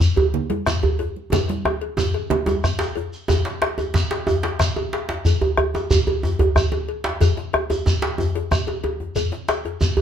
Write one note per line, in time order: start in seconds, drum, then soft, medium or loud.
0.00 bombo low loud
0.00 djembe slap soft
0.00 djembe tone medium
0.00 djembe bass medium
0.00 shekere medium
0.16 cowbell soft
0.16 high conga soft
0.16 djembe bass loud
0.34 djembe slap soft
0.34 low conga medium
0.50 cowbell medium
0.50 djembe slap medium
0.50 high conga medium
0.50 djembe tone medium
0.66 bombo rim loud
0.66 bombo low medium
0.66 djembe slap medium
0.66 djembe bass medium
0.66 shekere medium
0.83 cowbell soft
0.83 djembe slap soft
0.83 djembe bass loud
0.99 cowbell medium
0.99 djembe tone medium
1.16 high conga soft
1.32 bombo low medium
1.32 cowbell medium
1.32 djembe slap soft
1.32 djembe tone loud
1.32 high conga soft
1.32 low conga medium
1.32 djembe bass medium
1.32 shekere medium
1.48 bombo rim soft
1.48 djembe slap medium
1.48 high conga medium
1.48 djembe tone medium
1.65 bombo rim medium
1.65 cowbell soft
1.65 djembe tone loud
1.81 cowbell soft
1.81 djembe slap soft
1.97 bombo low loud
1.97 djembe tone loud
1.97 djembe tone medium
1.97 djembe bass medium
1.97 shekere medium
2.14 bombo rim soft
2.14 cowbell medium
2.30 bombo rim soft
2.30 djembe tone loud
2.30 low conga medium
2.46 cowbell soft
2.46 djembe slap medium
2.46 djembe tone loud
2.46 high conga medium
2.46 djembe tone medium
2.46 shekere soft
2.64 bombo rim medium
2.64 bombo low medium
2.64 djembe slap soft
2.64 djembe bass medium
2.64 shekere medium
2.79 cowbell soft
2.79 djembe slap loud
2.81 djembe slap soft
2.81 shekere soft
2.96 cowbell medium
2.96 djembe slap soft
2.96 djembe tone medium
3.13 shekere soft
3.28 bombo low loud
3.28 cowbell medium
3.28 djembe tone loud
3.28 djembe bass medium
3.28 shekere medium
3.45 bombo rim soft
3.45 djembe slap medium
3.62 bombo rim loud
3.62 cowbell soft
3.62 djembe slap medium
3.62 djembe slap soft
3.78 cowbell soft
3.78 djembe tone medium
3.78 shekere soft
3.94 bombo low loud
3.94 djembe slap medium
3.94 shekere medium
4.11 cowbell soft
4.11 djembe slap medium
4.27 djembe tone loud
4.27 djembe bass medium
4.27 shekere soft
4.43 cowbell medium
4.43 djembe slap loud
4.43 djembe slap medium
4.43 djembe tone medium
4.59 bombo rim loud
4.59 bombo low loud
4.59 djembe slap medium
4.59 shekere medium
4.76 cowbell soft
4.76 djembe tone medium
4.93 cowbell soft
4.93 djembe slap medium
5.09 djembe slap medium
5.09 djembe tone medium
5.25 bombo low loud
5.25 cowbell medium
5.25 djembe bass medium
5.25 shekere medium
5.41 bombo rim soft
5.41 djembe slap medium
5.41 djembe bass loud
5.57 bombo rim loud
5.57 cowbell medium
5.57 djembe bass medium
5.74 cowbell soft
5.74 djembe tone medium
5.74 djembe tone loud
5.74 shekere soft
5.91 bombo low loud
5.91 djembe bass loud
5.91 shekere medium
6.07 cowbell medium
6.07 djembe bass medium
6.23 djembe tone medium
6.23 djembe bass medium
6.23 shekere soft
6.39 cowbell medium
6.39 djembe slap medium
6.39 djembe tone medium
6.39 djembe bass loud
6.56 bombo rim loud
6.56 bombo low loud
6.56 djembe bass medium
6.56 shekere medium
6.72 cowbell medium
6.72 djembe tone medium
6.89 cowbell medium
7.04 djembe slap loud
7.04 djembe tone medium
7.21 bombo low loud
7.21 cowbell medium
7.21 djembe tone medium
7.21 djembe bass medium
7.21 shekere medium
7.37 bombo rim soft
7.37 djembe slap medium
7.53 bombo rim loud
7.53 cowbell medium
7.53 djembe slap soft
7.53 djembe tone medium
7.70 cowbell soft
7.70 djembe tone medium
7.70 shekere soft
7.86 bombo low loud
7.86 djembe tone medium
7.86 shekere medium
8.02 cowbell soft
8.02 djembe slap loud
8.18 djembe tone medium
8.18 djembe bass medium
8.18 shekere soft
8.35 cowbell medium
8.35 djembe slap medium
8.35 djembe tone medium
8.51 bombo rim medium
8.51 bombo low loud
8.51 djembe tone medium
8.51 shekere medium
8.67 cowbell soft
8.67 djembe tone medium
8.84 cowbell medium
8.84 djembe tone medium
9.00 djembe tone medium
9.15 bombo rim soft
9.15 bombo low loud
9.15 cowbell medium
9.15 djembe slap soft
9.15 djembe bass medium
9.15 shekere medium
9.32 bombo rim soft
9.32 djembe slap medium
9.48 bombo rim loud
9.48 cowbell medium
9.48 djembe slap soft
9.48 djembe slap medium
9.48 shekere soft
9.65 bombo rim soft
9.65 cowbell soft
9.65 djembe slap soft
9.65 djembe tone medium
9.81 bombo rim soft
9.81 bombo low loud
9.81 djembe tone medium
9.81 shekere medium
9.97 bombo rim soft
9.97 cowbell soft
9.97 djembe bass loud